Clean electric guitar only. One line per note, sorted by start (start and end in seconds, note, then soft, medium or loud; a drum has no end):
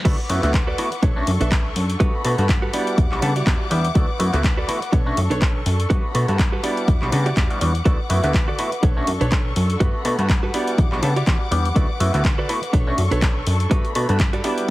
0.05 0.19 F#4 loud
0.05 0.19 A4 medium
0.05 0.19 B4 loud
0.05 0.19 D5 loud
0.29 muted clean electric guitar stroke soft
0.67 0.78 F#4 medium
0.67 0.78 A4 medium
0.67 0.79 B4 medium
0.67 0.79 D5 medium
0.92 muted clean electric guitar stroke soft
1.02 1.22 D4 medium
1.02 1.22 A4 medium
1.02 1.22 B4 medium
1.02 1.22 C#5 medium
1.40 1.71 D4 medium
1.40 1.71 A4 medium
1.40 1.71 B4 medium
1.40 1.71 E5 medium
2.00 2.14 F#4 loud
2.00 2.14 G4 medium
2.00 2.14 A4 medium
2.00 2.14 B4 loud
2.25 muted clean electric guitar stroke soft
2.62 2.72 F#4 medium
2.62 2.72 G4 medium
2.62 2.74 A4 medium
2.62 2.74 B4 medium
2.73 3.22 E4 medium
2.73 3.22 F#4 medium
2.73 3.22 G4 medium
2.73 3.23 D5 loud
3.22 3.35 F#5 medium
3.36 3.66 E4 medium
3.36 3.66 F#4 medium
3.36 3.66 G4 medium
3.36 3.46 D5 medium
3.71 3.94 E5 medium
3.95 4.09 F#4 loud
3.95 4.09 A4 medium
3.95 4.09 B4 loud
3.95 4.09 D5 loud
4.20 muted clean electric guitar stroke soft
4.57 4.68 F#4 medium
4.57 4.69 A4 medium
4.57 4.69 B4 medium
4.57 4.69 D5 medium
4.82 muted clean electric guitar stroke soft
4.92 5.12 D4 medium
4.92 5.12 A4 medium
4.92 5.12 B4 medium
4.92 5.12 C#5 medium
5.30 5.61 D4 medium
5.30 5.61 A4 medium
5.30 5.61 B4 medium
5.30 5.61 C#5 medium
5.90 6.04 F#4 loud
5.90 6.04 G4 medium
5.90 6.04 A4 medium
5.90 6.04 B4 loud
6.15 muted clean electric guitar stroke soft
6.52 6.62 F#4 medium
6.52 6.63 G4 medium
6.52 6.64 A4 medium
6.52 6.64 B4 medium
6.63 7.12 E4 medium
6.63 7.12 F#4 medium
6.63 7.13 G4 medium
6.63 7.13 D5 loud
7.26 7.56 E4 medium
7.26 7.56 F#4 medium
7.26 7.56 G4 medium
7.26 7.56 D5 medium
7.85 7.99 F#4 loud
7.85 7.99 A4 medium
7.85 7.99 B4 loud
7.85 8.00 D5 loud
8.10 muted clean electric guitar stroke soft
8.48 8.59 F#4 loud
8.48 8.59 A4 medium
8.48 8.59 B4 medium
8.48 8.59 D5 medium
8.72 muted clean electric guitar stroke soft
8.83 9.02 D4 medium
8.83 9.02 A4 medium
8.83 9.02 B4 medium
8.83 9.02 C#5 medium
9.21 9.51 D4 medium
9.21 9.51 A4 medium
9.21 9.51 B4 medium
9.21 9.51 C#5 medium
9.80 9.94 F#4 loud
9.80 9.94 G4 medium
9.80 9.95 A4 medium
9.80 9.95 B4 loud
10.05 muted clean electric guitar stroke soft
10.43 10.53 F#4 loud
10.43 10.53 G4 medium
10.43 10.54 A4 medium
10.43 10.54 B4 medium
10.54 11.03 E4 medium
10.54 11.03 F#4 medium
10.54 11.03 G4 medium
10.54 11.03 D5 loud
11.16 11.27 E4 medium
11.16 11.46 F#4 medium
11.16 11.46 G4 medium
11.16 11.46 D5 medium
11.27 11.73 B5 medium
11.76 11.90 F#4 loud
11.76 11.90 A4 medium
11.76 11.90 B4 loud
11.76 11.90 D5 loud
12.00 muted clean electric guitar stroke soft
12.38 12.49 F#4 medium
12.38 12.49 A4 medium
12.38 12.49 B4 medium
12.38 12.50 D5 medium
12.63 muted clean electric guitar stroke soft
12.73 12.92 D4 medium
12.73 12.93 A4 medium
12.73 12.93 B4 medium
12.73 12.93 C#5 medium
13.11 13.41 D4 medium
13.11 13.41 A4 medium
13.11 13.41 B4 medium
13.11 13.42 C#5 medium
13.71 13.85 F#4 loud
13.71 13.85 G4 medium
13.71 13.85 A4 medium
13.71 13.85 B4 loud
13.95 muted clean electric guitar stroke soft
14.33 14.43 F#4 medium
14.33 14.43 G4 medium
14.33 14.44 A4 medium
14.33 14.43 D5 medium
14.44 14.70 E4 medium
14.44 14.70 F#4 medium
14.44 14.70 G4 medium
14.44 14.70 D5 medium
14.44 14.67 A5 medium